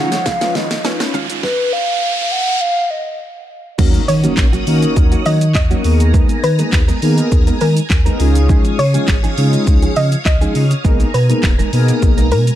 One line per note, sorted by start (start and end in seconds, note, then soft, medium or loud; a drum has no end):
0.00 0.16 D#3 medium
0.00 1.41 F3 medium
0.00 0.12 G#3 medium
0.00 0.11 C#4 medium
0.00 0.14 C#4 medium
0.00 0.14 D#4 medium
0.00 1.41 D#4 medium
0.00 0.11 F4 medium
0.00 0.14 F4 medium
0.00 0.14 G#4 medium
0.00 1.41 C#5 medium
0.00 0.25 F#5 loud
0.00 riser medium
0.12 muted clean electric guitar stroke soft
0.12 snare loud
0.12 closed hi-hat medium
0.12 shaker medium
0.26 0.34 C#3 medium
0.26 0.57 F5 loud
0.26 muted clean electric guitar stroke soft
0.26 kick loud
0.26 snare loud
0.26 shaker medium
0.41 0.48 F3 medium
0.41 0.64 C#4 medium
0.41 0.64 D#4 medium
0.41 0.64 F4 medium
0.41 0.65 B4 medium
0.41 muted clean electric guitar stroke medium
0.41 snare loud
0.41 closed hi-hat medium
0.41 shaker medium
0.55 0.75 D#3 medium
0.55 0.70 G#3 medium
0.55 0.70 C#4 medium
0.55 0.69 F4 medium
0.55 0.85 D#5 medium
0.55 snare loud
0.55 shaker soft
0.71 muted clean electric guitar stroke soft
0.71 snare loud
0.71 closed hi-hat medium
0.71 shaker medium
0.84 1.16 C#4 medium
0.84 0.93 C#4 loud
0.84 1.16 D#4 medium
0.84 1.16 F4 medium
0.84 1.16 B4 medium
0.84 muted clean electric guitar stroke soft
0.84 snare loud
0.84 shaker medium
1.00 1.07 F3 medium
1.00 muted clean electric guitar stroke soft
1.00 snare loud
1.00 closed hi-hat medium
1.00 shaker medium
1.14 1.30 D#3 medium
1.14 1.29 G#3 medium
1.14 1.29 C#4 loud
1.14 1.28 F4 medium
1.14 1.22 F5 medium
1.14 shaker medium
1.29 1.45 D#3 medium
1.29 1.44 G#3 medium
1.29 1.44 C#4 medium
1.29 1.44 F4 medium
1.29 closed hi-hat medium
1.29 shaker medium
1.43 1.74 B4 medium
1.43 kick loud
1.43 snare medium
1.73 2.33 F5 loud
2.31 2.60 F#5 loud
2.61 2.92 F5 loud
2.90 3.20 D#5 medium
3.78 3.98 D#2 loud
3.78 3.99 F#3 medium
3.78 4.02 A#3 medium
3.78 3.94 A#3 medium
3.78 4.02 C#4 medium
3.78 3.93 C#4 loud
3.78 4.03 D#4 medium
3.78 4.03 F#4 medium
3.78 3.93 F#4 medium
3.78 4.03 A#4 loud
3.78 5.83 C#5 medium
3.78 5.83 F#5 medium
3.78 5.83 D#6 loud
3.78 kick loud
3.78 crash loud
3.78 impact medium
3.78 shaker medium
3.94 muted clean electric guitar stroke medium
3.94 closed hi-hat medium
3.94 shaker medium
4.08 4.27 D#3 loud
4.08 4.22 C#5 medium
4.08 muted clean electric guitar stroke soft
4.08 open hi-hat medium
4.08 shaker medium
4.23 4.36 F#3 medium
4.23 4.47 A#3 medium
4.23 4.37 A#3 medium
4.23 4.47 C#4 medium
4.23 4.37 C#4 medium
4.23 4.47 D#4 medium
4.23 4.37 F#4 medium
4.23 4.47 F#4 medium
4.23 4.47 A#4 medium
4.23 closed hi-hat medium
4.23 shaker medium
4.37 4.57 A#1 loud
4.37 kick loud
4.37 snare loud
4.37 clap loud
4.37 shaker medium
4.53 4.65 F#3 medium
4.53 4.66 A#3 medium
4.53 4.66 C#4 medium
4.53 4.67 F#4 medium
4.53 closed hi-hat medium
4.53 shaker medium
4.67 4.86 D#3 loud
4.67 5.22 A#3 medium
4.67 5.22 C#4 medium
4.67 5.22 D#4 medium
4.67 5.22 F#4 medium
4.67 5.22 A#4 loud
4.67 muted clean electric guitar stroke soft
4.67 open hi-hat medium
4.67 shaker medium
4.82 muted clean electric guitar stroke medium
4.82 closed hi-hat medium
4.82 shaker medium
4.96 5.16 D#2 loud
4.96 muted clean electric guitar stroke soft
4.96 kick loud
4.96 shaker medium
5.12 5.24 F#3 medium
5.12 5.25 A#3 medium
5.12 5.25 C#4 medium
5.12 5.26 F#4 medium
5.12 closed hi-hat medium
5.12 shaker medium
5.25 5.57 D#3 loud
5.25 5.46 F#3 medium
5.25 5.41 A#3 medium
5.25 5.41 C#4 medium
5.25 5.40 F#4 medium
5.25 5.39 D#5 medium
5.25 open hi-hat medium
5.25 shaker medium
5.41 muted clean electric guitar stroke medium
5.41 closed hi-hat medium
5.41 shaker medium
5.55 5.74 D#2 loud
5.55 5.98 D#5 medium
5.55 muted clean electric guitar stroke soft
5.55 kick loud
5.55 snare medium
5.55 clap loud
5.55 shaker medium
5.70 5.84 F#3 medium
5.70 5.83 A#3 medium
5.70 5.84 A#3 medium
5.70 5.85 C#4 medium
5.70 5.83 D#4 medium
5.70 5.85 F#4 medium
5.70 5.84 A#4 medium
5.70 closed hi-hat medium
5.70 shaker medium
5.84 6.23 D#2 loud
5.84 6.43 A#3 medium
5.84 6.43 B3 medium
5.84 6.43 D#4 medium
5.84 6.44 G#4 medium
5.84 6.44 A#4 medium
5.84 8.17 G#5 medium
5.84 8.18 A#5 medium
5.84 muted clean electric guitar stroke medium
5.84 open hi-hat medium
5.84 shaker medium
6.00 muted clean electric guitar stroke soft
6.00 closed hi-hat medium
6.00 shaker medium
6.14 6.34 G#3 medium
6.14 6.29 B3 loud
6.14 6.29 D#4 medium
6.14 6.28 A#4 loud
6.14 kick loud
6.14 shaker medium
6.29 muted clean electric guitar stroke medium
6.29 closed hi-hat medium
6.29 shaker medium
6.43 6.63 D#3 loud
6.43 6.57 B4 medium
6.43 muted clean electric guitar stroke soft
6.43 open hi-hat medium
6.43 shaker medium
6.59 6.71 G#3 medium
6.59 6.82 A#3 medium
6.59 6.82 B3 medium
6.59 6.72 B3 medium
6.59 6.82 D#4 medium
6.59 6.72 D#4 medium
6.59 6.82 G#4 medium
6.59 6.73 A#4 medium
6.59 6.82 B4 medium
6.59 closed hi-hat medium
6.59 shaker medium
6.72 6.92 D#2 medium
6.72 kick loud
6.72 snare loud
6.72 clap loud
6.72 shaker medium
6.88 7.01 G#3 medium
6.88 7.01 B3 medium
6.88 7.02 D#4 medium
6.88 7.02 A#4 medium
6.88 closed hi-hat medium
6.88 shaker medium
7.02 7.21 D#3 loud
7.02 7.57 A#3 medium
7.02 7.57 B3 medium
7.02 7.57 D#4 medium
7.02 7.57 G#4 medium
7.02 7.57 A#4 loud
7.02 open hi-hat medium
7.02 shaker medium
7.18 muted clean electric guitar stroke medium
7.18 closed hi-hat medium
7.18 shaker medium
7.32 7.51 D#2 loud
7.32 muted clean electric guitar stroke medium
7.32 kick loud
7.32 shaker medium
7.47 7.60 G#3 medium
7.47 7.60 B3 medium
7.47 7.61 D#4 medium
7.47 7.61 A#4 medium
7.47 closed hi-hat medium
7.47 shaker medium
7.61 7.80 D#3 loud
7.61 7.81 G#3 medium
7.61 7.76 B3 loud
7.61 7.76 D#4 medium
7.61 7.75 A#4 medium
7.61 7.75 A#4 loud
7.61 open hi-hat medium
7.61 shaker medium
7.77 closed hi-hat medium
7.77 shaker medium
7.90 8.10 D#2 loud
7.90 muted clean electric guitar stroke soft
7.90 kick loud
7.90 snare medium
7.90 clap loud
7.90 shaker medium
8.06 8.19 G#3 medium
8.06 8.20 A#3 medium
8.06 8.20 B3 medium
8.06 8.19 D#4 medium
8.06 8.19 G#4 medium
8.06 8.20 A#4 medium
8.06 8.20 A#4 loud
8.06 closed hi-hat medium
8.06 shaker medium
8.20 8.58 C#2 loud
8.20 8.79 G#3 loud
8.20 8.79 C#4 medium
8.20 8.79 D#4 medium
8.20 8.79 F4 medium
8.20 8.79 G#4 loud
8.20 10.82 C#5 medium
8.20 10.82 F5 medium
8.20 10.82 D#6 medium
8.20 muted clean electric guitar stroke medium
8.20 open hi-hat medium
8.20 shaker medium
8.35 muted clean electric guitar stroke soft
8.35 closed hi-hat medium
8.35 shaker medium
8.49 8.69 F3 medium
8.49 8.65 C#4 medium
8.49 8.64 D#4 medium
8.49 8.63 G#4 loud
8.49 kick loud
8.49 shaker medium
8.65 muted clean electric guitar stroke medium
8.65 closed hi-hat medium
8.65 shaker medium
8.78 8.98 C#3 loud
8.78 8.92 C#5 medium
8.78 muted clean electric guitar stroke soft
8.78 open hi-hat medium
8.78 shaker medium
8.94 9.07 F3 soft
8.94 9.17 G#3 medium
8.94 9.17 C#4 medium
8.94 9.07 C#4 medium
8.94 9.17 D#4 medium
8.94 9.08 D#4 medium
8.94 9.17 F4 medium
8.94 9.08 G#4 medium
8.94 9.17 G#4 medium
8.94 closed hi-hat medium
8.94 shaker medium
9.08 9.27 G#1 loud
9.08 muted clean electric guitar stroke medium
9.08 kick loud
9.08 snare loud
9.08 clap loud
9.08 shaker medium
9.23 9.36 F3 medium
9.23 9.37 C#4 medium
9.23 9.37 D#4 medium
9.23 9.37 G#4 medium
9.23 closed hi-hat medium
9.23 shaker medium
9.37 9.57 C#3 loud
9.37 9.92 G#3 medium
9.37 9.92 C#4 medium
9.37 9.92 D#4 medium
9.37 9.92 F4 medium
9.37 9.92 G#4 loud
9.37 muted clean electric guitar stroke soft
9.37 open hi-hat medium
9.37 shaker medium
9.53 muted clean electric guitar stroke soft
9.53 closed hi-hat medium
9.53 shaker medium
9.67 9.86 C#2 loud
9.67 muted clean electric guitar stroke soft
9.67 kick loud
9.67 shaker medium
9.82 9.95 F3 medium
9.82 9.95 C#4 medium
9.82 9.96 D#4 medium
9.82 9.96 G#4 medium
9.82 closed hi-hat medium
9.82 shaker medium
9.96 10.16 C#3 loud
9.96 10.16 F3 medium
9.96 10.12 C#4 medium
9.96 10.11 D#4 medium
9.96 10.11 G#4 medium
9.96 10.10 D#5 medium
9.96 open hi-hat medium
9.96 shaker medium
10.12 muted clean electric guitar stroke soft
10.12 closed hi-hat medium
10.12 shaker medium
10.25 10.45 C#2 loud
10.25 10.68 D#5 medium
10.25 muted clean electric guitar stroke soft
10.25 kick loud
10.25 snare medium
10.25 clap loud
10.25 shaker medium
10.41 10.54 F3 medium
10.41 10.64 G#3 medium
10.41 10.64 C#4 medium
10.41 10.54 C#4 medium
10.41 10.64 D#4 medium
10.41 10.55 D#4 medium
10.41 10.64 F4 medium
10.41 10.55 G#4 medium
10.41 10.65 G#4 medium
10.41 closed hi-hat medium
10.41 shaker medium
10.55 10.74 C#3 loud
10.55 open hi-hat medium
10.55 shaker medium
10.71 muted clean electric guitar stroke soft
10.71 closed hi-hat medium
10.71 shaker medium
10.84 11.04 B1 loud
10.84 11.04 G#3 medium
10.84 11.08 A#3 medium
10.84 11.08 B3 medium
10.84 11.00 B3 medium
10.84 11.08 D#4 medium
10.84 10.99 D#4 medium
10.84 11.08 G#4 medium
10.84 11.08 A#4 loud
10.84 10.99 A#4 loud
10.84 12.55 G#5 medium
10.84 12.55 A#5 medium
10.84 kick loud
10.84 shaker medium
11.00 muted clean electric guitar stroke medium
11.00 closed hi-hat medium
11.00 shaker medium
11.14 11.33 B2 loud
11.14 11.28 B4 medium
11.14 muted clean electric guitar stroke soft
11.14 open hi-hat medium
11.14 shaker medium
11.29 11.42 G#3 medium
11.29 11.52 A#3 medium
11.29 11.53 B3 medium
11.29 11.42 B3 medium
11.29 11.53 D#4 medium
11.29 11.43 D#4 medium
11.29 11.53 G#4 medium
11.29 11.43 A#4 medium
11.29 11.53 A#4 medium
11.29 closed hi-hat medium
11.29 shaker medium
11.43 11.63 D#1 loud
11.43 kick loud
11.43 snare loud
11.43 clap loud
11.43 shaker medium
11.59 11.71 G#3 medium
11.59 11.72 B3 medium
11.59 11.72 D#4 medium
11.59 11.72 A#4 medium
11.59 closed hi-hat medium
11.59 shaker medium
11.73 11.92 B2 loud
11.73 12.27 A#3 medium
11.73 12.28 B3 medium
11.73 12.28 D#4 medium
11.73 12.28 G#4 medium
11.73 12.28 A#4 loud
11.73 muted clean electric guitar stroke soft
11.73 open hi-hat medium
11.73 shaker medium
11.88 muted clean electric guitar stroke soft
11.88 closed hi-hat medium
11.88 shaker medium
12.02 12.33 B1 loud
12.02 muted clean electric guitar stroke soft
12.02 kick loud
12.02 shaker medium
12.17 12.30 G#3 soft
12.17 12.31 B3 medium
12.17 12.31 D#4 medium
12.17 12.32 A#4 medium
12.17 closed hi-hat medium
12.17 shaker medium
12.31 12.51 B2 loud
12.31 12.51 G#3 medium
12.31 12.47 B3 medium
12.31 12.46 D#4 medium
12.31 12.45 A#4 medium
12.31 12.46 A#4 medium
12.31 open hi-hat medium
12.31 shaker soft
12.47 muted clean electric guitar stroke medium
12.47 closed hi-hat medium
12.47 shaker medium